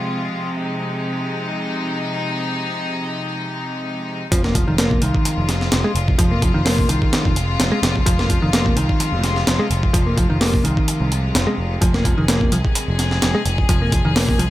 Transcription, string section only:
0.00 4.27 C3 medium
0.00 4.27 F3 medium
0.00 4.27 G#3 medium
0.00 0.53 F4 medium
0.56 4.28 D#4 medium
4.32 14.50 C3 medium
4.32 14.50 F3 medium
4.32 14.50 G#3 medium
4.32 11.80 F4 medium
11.81 14.50 G#4 medium

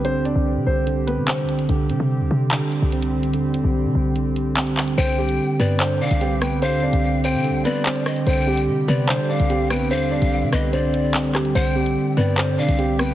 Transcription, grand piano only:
0.05 0.24 C4 medium
0.05 0.24 C5 loud
0.25 0.64 D4 medium
0.25 0.64 D5 medium
0.67 1.06 C4 medium
0.67 1.05 C5 medium
1.07 1.27 B3 medium
1.07 1.27 B4 medium
1.28 1.67 C4 medium
1.28 1.67 C5 medium
4.98 5.17 C4 medium
4.98 5.17 C5 loud
5.18 5.57 G3 medium
5.18 5.57 G4 medium
5.60 5.79 B3 medium
5.60 5.79 B4 medium
5.80 6.00 C4 medium
5.80 5.99 C5 medium
6.01 6.20 D4 medium
6.01 6.20 D5 medium
6.21 6.41 G3 medium
6.21 6.40 G4 medium
6.41 6.61 B3 medium
6.41 6.61 B4 medium
6.62 6.82 C4 medium
6.62 6.82 C5 loud
6.83 7.22 D4 medium
6.83 7.21 D5 medium
7.24 7.63 C4 medium
7.24 7.63 C5 medium
7.65 7.85 B3 medium
7.65 7.84 B4 medium
7.86 8.25 C4 medium
7.86 8.24 C5 medium
8.27 8.46 C4 medium
8.27 8.46 C5 medium
8.47 8.86 G3 medium
8.47 8.86 G4 medium
8.88 9.08 B3 medium
8.88 9.07 B4 medium
9.08 9.28 C4 medium
9.08 9.28 C5 loud
9.29 9.49 D4 medium
9.29 9.48 D5 medium
9.50 9.70 G3 medium
9.50 9.69 G4 medium
9.70 9.90 B3 medium
9.70 9.90 B4 medium
9.91 10.11 C4 medium
9.91 10.10 C5 medium
10.11 10.50 D4 medium
10.11 10.50 D5 medium
10.53 10.72 B3 medium
10.53 10.72 B4 medium
10.73 11.31 C4 medium
10.73 11.31 C5 medium
11.34 11.54 G3 medium
11.34 11.54 G4 medium
11.55 11.75 C4 medium
11.55 11.75 C5 loud
11.75 12.15 G3 medium
11.75 12.14 G4 medium
12.17 12.37 B3 medium
12.17 12.36 B4 medium
12.38 12.57 C4 medium
12.38 12.57 C5 medium
12.58 12.78 D4 medium
12.58 12.77 D5 medium
12.79 12.98 G3 medium
12.79 12.98 G4 medium
12.99 13.14 B3 medium
12.99 13.14 B4 medium

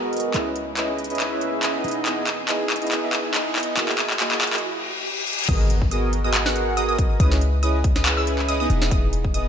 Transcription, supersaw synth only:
0.03 0.32 B3 medium
0.03 0.32 F#4 medium
0.03 0.32 G#4 medium
0.03 0.32 A#4 medium
0.03 0.32 D#5 loud
0.34 0.49 C#4 medium
0.34 0.49 E4 medium
0.34 0.50 G#4 medium
0.34 0.50 B4 medium
0.34 0.49 D#5 loud
0.77 0.92 C#4 medium
0.77 0.92 E4 medium
0.77 0.92 G#4 medium
0.77 0.92 B4 medium
0.77 0.92 D#5 medium
1.10 1.29 C#4 medium
1.10 1.29 E4 medium
1.10 1.29 G#4 medium
1.10 1.29 B4 medium
1.10 1.29 D#5 medium
1.32 1.60 C#4 medium
1.32 1.60 E4 medium
1.32 1.60 G#4 medium
1.32 1.60 B4 medium
1.32 1.60 E5 loud
1.63 1.73 C#4 loud
1.63 1.73 E4 medium
1.63 1.73 G#4 medium
1.63 1.73 B4 medium
1.63 1.73 D#5 loud
1.74 2.03 B3 medium
1.74 2.03 D#4 medium
1.74 2.03 E4 medium
1.74 2.03 G#4 medium
1.74 2.03 D#5 loud
2.06 2.21 B3 medium
2.06 2.21 D#4 medium
2.06 2.21 E4 medium
2.06 2.21 G#4 medium
2.06 2.21 D#5 loud
2.48 2.64 B3 medium
2.48 2.64 D#4 medium
2.48 2.64 E4 medium
2.48 2.64 G#4 medium
2.48 2.64 D#5 loud
2.82 3.00 B3 medium
2.82 3.00 D#4 medium
2.82 3.00 E4 medium
2.82 3.00 G#4 medium
2.82 3.00 D#5 medium
3.03 3.32 B3 medium
3.03 3.32 D#4 medium
3.03 3.32 E4 medium
3.03 3.32 G#4 medium
3.03 3.32 E5 loud
3.34 3.44 B3 loud
3.34 3.44 D#4 medium
3.34 3.44 E4 medium
3.34 3.44 G#4 medium
3.34 3.44 D#5 loud
3.46 3.75 B3 medium
3.46 3.75 D#4 medium
3.46 3.75 E4 medium
3.46 3.75 G#4 medium
3.46 3.75 D#5 loud
3.77 3.92 A#3 medium
3.77 3.92 E4 medium
3.77 3.92 F#4 medium
3.77 3.92 G#4 medium
3.77 3.92 D#5 loud
4.20 4.35 A#3 medium
4.20 4.35 E4 medium
4.20 4.35 F#4 medium
4.20 4.35 G#4 medium
4.20 4.35 D#5 loud
4.53 4.63 A#3 medium
4.53 4.63 E4 medium
4.53 4.63 F#4 medium
4.53 4.63 G#4 medium
4.53 4.63 D#5 medium
5.49 5.64 B3 medium
5.49 5.64 F#4 medium
5.49 5.64 G#4 medium
5.49 5.64 A#4 medium
5.49 5.64 D#5 loud
5.91 6.07 B3 medium
5.91 6.07 F#4 medium
5.91 6.07 G#4 medium
5.91 6.07 A#4 medium
5.91 6.07 D#5 medium
6.24 6.43 B3 medium
6.24 6.43 F#4 medium
6.24 6.43 G#4 medium
6.24 6.43 A#4 medium
6.24 6.43 D#5 medium
6.46 6.75 B3 medium
6.46 6.75 F#4 medium
6.46 6.75 G#4 medium
6.46 6.75 A#4 medium
6.46 6.75 F#5 loud
6.77 6.87 B3 loud
6.77 6.87 F#4 medium
6.77 6.87 G#4 medium
6.77 6.87 A#4 medium
6.77 6.87 D#5 loud
6.89 7.18 B3 medium
6.89 7.18 F#4 medium
6.89 7.18 G#4 medium
6.89 7.18 A#4 medium
6.89 7.18 D#5 loud
7.20 7.35 C#4 medium
7.20 7.35 E4 medium
7.20 7.35 G#4 medium
7.20 7.35 B4 medium
7.20 7.35 D#5 loud
7.63 7.78 C#4 medium
7.63 7.78 E4 medium
7.63 7.78 G#4 medium
7.63 7.78 B4 medium
7.63 7.78 D#5 loud
7.96 8.15 C#4 medium
7.96 8.15 E4 medium
7.96 8.15 G#4 medium
7.96 8.15 B4 medium
7.96 8.15 D#5 medium
8.17 8.46 C#4 medium
8.17 8.46 E4 medium
8.17 8.46 G#4 medium
8.17 8.46 B4 medium
8.17 8.46 E5 loud
8.49 8.58 C#4 loud
8.49 8.58 E4 medium
8.49 8.58 G#4 medium
8.49 8.58 B4 medium
8.49 8.58 D#5 loud
8.60 8.89 B3 medium
8.60 8.89 D#4 medium
8.60 8.89 E4 medium
8.60 8.89 G#4 medium
8.60 8.89 D#5 loud
8.91 9.07 B3 medium
8.91 9.07 D#4 medium
8.91 9.07 E4 medium
8.91 9.07 G#4 medium
8.91 9.07 D#5 loud
9.34 9.48 B3 medium
9.34 9.48 D#4 medium
9.34 9.48 E4 medium
9.34 9.48 G#4 medium
9.34 9.48 D#5 loud

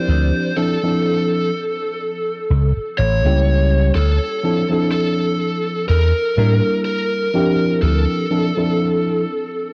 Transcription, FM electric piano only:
0.00 0.51 F3 loud
0.00 0.52 C4 medium
0.00 0.52 D4 medium
0.00 0.52 E4 medium
0.00 0.52 G4 loud
0.56 0.77 F3 medium
0.56 0.77 C4 medium
0.56 0.77 D4 medium
0.56 0.77 E4 medium
0.56 0.77 A4 medium
0.83 1.51 F3 medium
0.83 1.51 C4 medium
0.83 1.51 D4 medium
0.83 1.51 E4 medium
0.83 1.51 A4 loud
3.25 3.93 G3 medium
3.25 3.93 A#3 medium
3.25 3.93 C#4 medium
3.25 3.93 E4 medium
3.25 3.93 G4 loud
4.43 4.64 F3 medium
4.43 4.64 C4 medium
4.43 4.64 D4 medium
4.43 4.64 E4 medium
4.43 4.64 A4 loud
4.69 5.86 F3 medium
4.69 5.86 C4 medium
4.69 5.87 D4 medium
4.69 5.87 E4 medium
4.69 5.87 A4 loud
6.37 7.29 G3 medium
6.37 7.29 A#3 medium
6.37 7.29 D4 medium
6.37 7.29 E4 medium
6.37 7.29 A#4 medium
7.34 8.25 F3 loud
7.34 8.26 C4 medium
7.34 8.26 D4 medium
7.34 8.26 E4 medium
7.34 8.26 G4 loud
8.30 8.51 F3 medium
8.30 8.51 C4 medium
8.30 8.51 D4 medium
8.30 8.51 E4 medium
8.30 8.52 A4 medium
8.57 9.25 F3 medium
8.57 9.25 C4 medium
8.57 9.25 D4 medium
8.57 9.25 E4 medium
8.57 9.25 A4 loud

